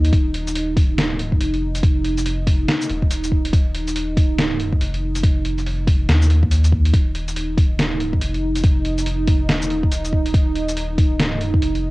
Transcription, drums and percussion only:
0.05 closed hi-hat medium
0.13 kick loud
0.13 closed hi-hat medium
0.34 closed hi-hat medium
0.47 closed hi-hat soft
0.47 shaker medium
0.55 closed hi-hat medium
0.77 kick loud
0.77 open hi-hat loud
0.98 snare loud
0.98 closed hi-hat medium
1.19 closed hi-hat medium
1.32 kick medium
1.41 closed hi-hat medium
1.54 closed hi-hat soft
1.75 closed hi-hat medium
1.75 shaker medium
1.83 kick loud
1.83 closed hi-hat medium
2.04 closed hi-hat medium
2.17 closed hi-hat soft
2.17 shaker medium
2.26 closed hi-hat medium
2.47 kick loud
2.47 open hi-hat loud
2.68 snare loud
2.68 closed hi-hat medium
2.81 shaker medium
2.89 closed hi-hat medium
3.02 kick medium
3.11 closed hi-hat medium
3.11 shaker medium
3.24 closed hi-hat soft
3.24 shaker medium
3.32 kick medium
3.45 closed hi-hat medium
3.53 kick loud
3.53 closed hi-hat medium
3.75 closed hi-hat medium
3.88 closed hi-hat soft
3.88 shaker medium
3.96 closed hi-hat medium
4.17 kick loud
4.17 open hi-hat loud
4.38 snare loud
4.38 closed hi-hat medium
4.60 closed hi-hat medium
4.73 kick medium
4.81 closed hi-hat medium
4.94 closed hi-hat soft
5.15 closed hi-hat medium
5.15 shaker medium
5.23 kick loud
5.23 closed hi-hat medium
5.45 closed hi-hat medium
5.58 closed hi-hat soft
5.58 shaker medium
5.66 closed hi-hat medium
5.87 kick loud
5.87 open hi-hat loud
6.09 snare loud
6.09 closed hi-hat medium
6.22 shaker medium
6.30 closed hi-hat medium
6.43 kick medium
6.51 closed hi-hat medium
6.51 shaker medium
6.64 closed hi-hat soft
6.64 shaker medium
6.72 kick medium
6.85 closed hi-hat medium
6.94 kick loud
6.94 closed hi-hat medium
7.15 closed hi-hat medium
7.28 closed hi-hat soft
7.28 shaker medium
7.36 closed hi-hat medium
7.58 kick loud
7.58 open hi-hat loud
7.79 snare loud
7.79 closed hi-hat medium
8.00 closed hi-hat medium
8.13 kick medium
8.21 closed hi-hat medium
8.34 closed hi-hat soft
8.56 closed hi-hat medium
8.56 shaker medium
8.64 kick loud
8.64 closed hi-hat medium
8.85 closed hi-hat medium
8.98 closed hi-hat soft
8.98 shaker medium
9.06 closed hi-hat medium
9.28 kick loud
9.28 open hi-hat loud
9.49 snare loud
9.49 closed hi-hat medium
9.62 shaker medium
9.70 closed hi-hat medium
9.83 kick medium
9.92 closed hi-hat medium
9.92 shaker medium
10.05 closed hi-hat soft
10.05 shaker medium
10.13 kick medium
10.26 closed hi-hat medium
10.34 kick loud
10.34 closed hi-hat medium
10.56 closed hi-hat medium
10.69 closed hi-hat soft
10.69 shaker medium
10.77 closed hi-hat medium
10.98 kick loud
10.98 open hi-hat medium
11.19 snare loud
11.19 closed hi-hat medium
11.41 closed hi-hat soft
11.54 kick medium
11.62 closed hi-hat medium
11.75 closed hi-hat soft

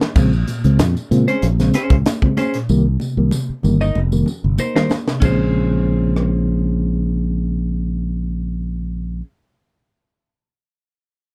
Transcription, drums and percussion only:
0.01 snare medium
0.16 kick loud
0.16 crash loud
0.16 tambourine medium
0.33 tambourine soft
0.47 closed hi-hat medium
0.47 tambourine medium
0.47 muted conga medium
0.64 closed hi-hat medium
0.64 tambourine soft
0.79 snare loud
0.79 closed hi-hat medium
0.79 tambourine loud
0.79 high conga medium
0.97 closed hi-hat soft
0.97 tambourine soft
1.12 closed hi-hat medium
1.12 tambourine medium
1.28 closed hi-hat medium
1.42 closed hi-hat medium
1.42 muted conga medium
1.59 snare soft
1.59 closed hi-hat soft
1.59 tambourine medium
1.74 snare soft
1.74 closed hi-hat medium
1.74 tambourine medium
1.90 kick loud
1.90 closed hi-hat soft
2.06 snare medium
2.06 closed hi-hat medium
2.06 tambourine loud
2.06 high conga medium
2.22 kick medium
2.37 closed hi-hat medium
2.37 tambourine medium
2.37 high conga medium
2.54 snare soft
2.54 closed hi-hat medium
2.69 tambourine medium
3.00 tambourine medium
3.00 muted conga medium
3.31 tambourine loud
3.31 high conga medium
3.63 tambourine medium
3.63 low conga medium
3.81 tambourine soft
3.95 muted conga medium
4.12 tambourine medium
4.26 tambourine medium
4.26 low conga medium
4.58 tambourine loud
4.58 high conga medium
4.76 snare medium
4.90 snare medium
4.90 tambourine medium
4.90 high conga medium
5.08 snare medium
5.21 kick loud
5.21 crash medium
5.21 tambourine medium
5.21 muted conga medium
6.16 cross-stick medium

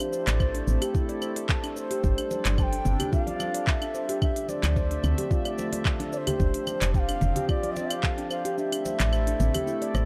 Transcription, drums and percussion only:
0.00 open hi-hat soft
0.00 cabasa soft
0.00 claves medium
0.13 cabasa medium
0.27 clap medium
0.27 open hi-hat medium
0.27 cabasa soft
0.40 kick loud
0.40 cabasa soft
0.40 claves medium
0.55 open hi-hat soft
0.55 cabasa soft
0.68 cabasa medium
0.82 open hi-hat medium
0.82 cabasa soft
0.82 claves medium
0.95 kick loud
0.95 cabasa soft
1.09 open hi-hat soft
1.09 cabasa soft
1.22 cabasa medium
1.22 claves medium
1.36 open hi-hat medium
1.36 cabasa soft
1.49 kick loud
1.49 clap medium
1.49 cabasa soft
1.64 open hi-hat soft
1.64 cabasa soft
1.64 claves medium
1.77 cabasa medium
1.91 open hi-hat soft
1.91 cabasa soft
2.04 kick loud
2.04 cabasa soft
2.18 open hi-hat soft
2.18 cabasa soft
2.18 claves medium
2.31 muted conga medium
2.31 cabasa medium
2.45 clap medium
2.45 open hi-hat medium
2.45 high conga medium
2.45 cabasa soft
2.58 kick loud
2.58 cabasa soft
2.58 claves medium
2.73 open hi-hat soft
2.73 cabasa soft
2.85 low conga loud
2.85 cabasa medium
3.00 open hi-hat medium
3.00 low conga medium
3.00 cabasa soft
3.00 claves medium
3.13 kick loud
3.13 cabasa soft
3.27 open hi-hat soft
3.27 high conga medium
3.27 cabasa soft
3.40 muted conga medium
3.40 cabasa medium
3.40 claves medium
3.54 open hi-hat medium
3.54 cabasa soft
3.67 kick loud
3.67 clap medium
3.67 cabasa soft
3.82 open hi-hat soft
3.82 cabasa soft
3.82 claves medium
3.95 cabasa medium
4.09 open hi-hat soft
4.09 cabasa soft
4.22 kick loud
4.22 cabasa soft
4.22 claves medium
4.36 open hi-hat soft
4.36 cabasa soft
4.49 muted conga medium
4.49 cabasa medium
4.63 clap medium
4.63 open hi-hat medium
4.63 high conga medium
4.63 cabasa soft
4.63 claves medium
4.76 kick loud
4.76 cabasa soft
4.91 open hi-hat soft
4.91 cabasa soft
5.04 low conga loud
5.04 cabasa medium
5.04 claves medium
5.18 open hi-hat medium
5.18 high conga medium
5.18 cabasa soft
5.31 kick loud
5.31 cabasa soft
5.45 open hi-hat soft
5.45 cabasa soft
5.45 claves medium
5.58 muted conga medium
5.58 cabasa medium
5.73 open hi-hat medium
5.73 muted conga soft
5.73 high conga medium
5.73 cabasa soft
5.85 kick loud
5.85 clap medium
5.85 cabasa soft
5.85 claves medium
6.00 open hi-hat soft
6.00 muted conga medium
6.00 cabasa soft
6.13 cabasa medium
6.27 open hi-hat medium
6.27 low conga medium
6.27 cabasa soft
6.27 claves medium
6.40 kick loud
6.40 cabasa soft
6.54 open hi-hat soft
6.54 cabasa soft
6.67 muted conga medium
6.67 cabasa medium
6.67 claves medium
6.81 clap medium
6.81 open hi-hat medium
6.81 high conga medium
6.81 cabasa soft
6.94 kick loud
6.94 cabasa soft
7.09 open hi-hat soft
7.09 cabasa soft
7.09 claves medium
7.21 low conga loud
7.21 cabasa medium
7.36 open hi-hat medium
7.36 low conga medium
7.36 cabasa soft
7.49 kick loud
7.49 cabasa soft
7.49 claves medium
7.63 open hi-hat soft
7.63 high conga medium
7.63 cabasa soft
7.76 muted conga medium
7.76 cabasa medium
7.90 open hi-hat medium
7.90 cabasa soft
7.90 claves medium
8.03 kick loud
8.03 clap medium
8.03 cabasa soft
8.18 open hi-hat soft
8.18 cabasa soft
8.31 cabasa medium
8.31 claves medium
8.45 open hi-hat medium
8.45 cabasa soft
8.58 cabasa soft
8.72 open hi-hat soft
8.72 cabasa soft
8.72 claves medium
8.85 muted conga medium
8.85 cabasa medium
8.99 clap medium
8.99 open hi-hat medium
8.99 high conga medium
8.99 cabasa soft
9.13 cabasa soft
9.13 claves medium
9.27 open hi-hat soft
9.27 cabasa soft
9.40 low conga medium
9.40 cabasa medium
9.54 open hi-hat medium
9.54 high conga medium
9.54 low conga medium
9.54 cabasa soft
9.54 claves medium
9.67 cabasa soft
9.82 open hi-hat soft
9.82 cabasa soft
9.95 cross-stick medium
9.95 muted conga medium
9.95 cabasa medium
9.95 claves medium

